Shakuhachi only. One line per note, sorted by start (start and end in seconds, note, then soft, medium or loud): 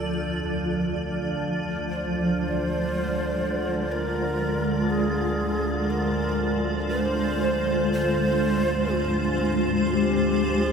0.00 1.35 A4 medium
1.90 3.93 C5 medium
3.92 4.92 A#4 medium
4.90 5.92 G#4 medium
5.90 6.66 A#4 medium
6.90 7.89 C5 medium
7.93 8.95 C5 medium
8.94 9.95 F4 medium
9.94 10.72 G4 medium